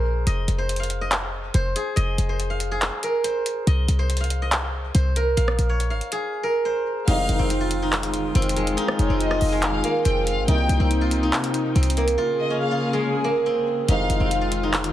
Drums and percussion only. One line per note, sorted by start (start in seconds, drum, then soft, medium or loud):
0.27 closed hi-hat medium
0.48 closed hi-hat medium
0.69 closed hi-hat medium
0.76 closed hi-hat medium
0.83 closed hi-hat soft
0.90 closed hi-hat medium
1.11 clap loud
1.11 closed hi-hat medium
1.54 closed hi-hat medium
1.76 closed hi-hat medium
1.97 closed hi-hat medium
2.18 closed hi-hat medium
2.40 closed hi-hat medium
2.60 closed hi-hat medium
2.82 clap loud
2.82 closed hi-hat medium
3.03 closed hi-hat medium
3.24 closed hi-hat medium
3.46 closed hi-hat medium
3.67 closed hi-hat medium
3.88 closed hi-hat medium
4.10 closed hi-hat medium
4.17 closed hi-hat medium
4.24 closed hi-hat soft
4.30 closed hi-hat medium
4.52 clap loud
4.52 closed hi-hat medium
4.95 closed hi-hat medium
5.16 closed hi-hat medium
5.37 closed hi-hat medium
5.48 cross-stick loud
5.59 closed hi-hat medium
5.80 closed hi-hat medium
6.01 closed hi-hat soft
6.12 closed hi-hat medium
7.08 closed hi-hat medium
7.08 crash loud
7.29 closed hi-hat medium
7.50 closed hi-hat medium
7.71 closed hi-hat medium
7.93 clap loud
7.93 closed hi-hat soft
8.03 closed hi-hat medium
8.14 closed hi-hat medium
8.35 closed hi-hat soft
8.42 closed hi-hat medium
8.49 closed hi-hat medium
8.56 closed hi-hat medium
8.67 closed hi-hat medium
8.78 closed hi-hat medium
8.88 cross-stick loud
8.99 closed hi-hat medium
9.20 closed hi-hat medium
9.31 cross-stick medium
9.41 open hi-hat medium
9.62 clap loud
9.62 closed hi-hat medium
9.84 closed hi-hat medium
10.05 closed hi-hat medium
10.27 closed hi-hat medium
10.48 closed hi-hat medium
10.69 closed hi-hat medium
10.91 closed hi-hat medium
11.11 closed hi-hat medium
11.33 clap loud
11.33 closed hi-hat soft
11.44 closed hi-hat medium
11.54 closed hi-hat medium
11.76 closed hi-hat soft
11.83 closed hi-hat medium
11.90 closed hi-hat medium
11.97 closed hi-hat medium
12.08 closed hi-hat medium
13.88 closed hi-hat medium
14.10 closed hi-hat medium
14.31 closed hi-hat medium
14.52 closed hi-hat medium
14.74 clap loud
14.74 closed hi-hat soft
14.84 closed hi-hat medium